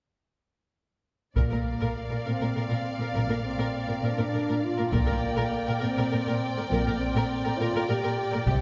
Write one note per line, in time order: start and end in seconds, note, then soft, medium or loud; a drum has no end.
1.36 1.50 A#1 soft
1.36 1.43 A#2 soft
1.36 2.22 A#3 medium
1.36 1.43 A#4 soft
1.36 4.89 D5 soft
1.36 4.90 F5 soft
1.36 taiko soft
1.51 1.57 A#2 soft
1.51 1.57 A#4 soft
1.81 1.87 A#2 soft
1.81 1.87 A#4 soft
2.11 2.17 A#2 soft
2.11 2.17 A#4 soft
2.25 2.32 A#2 soft
2.25 3.15 C4 medium
2.25 2.31 A#4 soft
2.41 2.47 A#2 soft
2.41 2.47 A#4 soft
2.55 2.61 A#2 soft
2.55 2.62 A#4 soft
2.69 2.75 A#2 soft
2.69 2.76 A#4 soft
2.99 3.05 A#2 soft
2.99 3.06 A#4 soft
3.12 3.29 A#1 soft
3.12 3.20 A#2 soft
3.12 3.43 A#3 medium
3.12 3.20 A#4 medium
3.28 3.34 A#2 soft
3.28 3.35 A#4 soft
3.44 4.03 C4 medium
3.58 3.64 A#2 soft
3.58 3.65 A#4 soft
3.88 3.94 A#2 soft
3.88 3.94 A#4 soft
4.03 4.09 A#2 soft
4.03 4.63 D4 medium
4.03 4.09 A#4 soft
4.17 4.24 A#2 soft
4.17 4.24 A#4 soft
4.33 4.39 A#2 soft
4.33 4.40 A#4 soft
4.48 4.55 A#2 medium
4.48 4.54 A#4 soft
4.64 4.93 F4 medium
4.78 4.85 A#2 soft
4.78 4.84 A#4 soft
4.91 5.07 A#1 soft
4.91 4.99 A#2 soft
4.91 5.81 A#3 medium
4.91 4.99 A#4 medium
4.91 8.61 D5 soft
4.91 8.43 G5 medium
4.91 taiko soft
5.08 5.14 A#2 soft
5.08 5.14 A#4 soft
5.36 5.44 A#2 soft
5.36 5.42 A#4 medium
5.68 5.74 A#2 soft
5.68 5.73 A#4 soft
5.80 5.89 A#2 medium
5.80 6.70 C4 medium
5.80 5.86 A#4 medium
5.98 6.04 A#2 soft
5.98 6.03 A#4 soft
6.12 6.18 A#2 soft
6.12 6.18 A#4 soft
6.27 6.33 A#2 medium
6.27 6.33 A#4 medium
6.57 6.63 A#2 soft
6.57 6.63 A#4 soft
6.70 6.84 A#1 medium
6.70 6.77 A#2 medium
6.70 7.00 A#3 medium
6.70 6.77 A#4 medium
6.87 6.92 A#2 soft
6.87 6.92 A#4 soft
6.98 7.58 C4 medium
7.16 7.22 A#2 medium
7.16 7.22 A#4 medium
7.44 7.51 A#2 soft
7.44 7.50 A#4 soft
7.58 7.66 A#2 medium
7.58 7.88 F4 medium
7.58 7.66 A#4 medium
7.75 7.80 A#2 soft
7.75 7.81 A#4 soft
7.89 7.95 A#2 soft
7.89 8.32 G4 medium
7.89 7.95 A#4 soft
8.04 8.10 A#2 medium
8.04 8.09 A#4 medium
8.32 8.40 A#2 soft
8.32 8.38 A#4 medium
8.46 8.61 C2 medium
8.46 8.54 C3 medium
8.46 8.53 G4 medium
8.46 8.61 G4 medium
8.46 8.61 G5 medium
8.46 taiko soft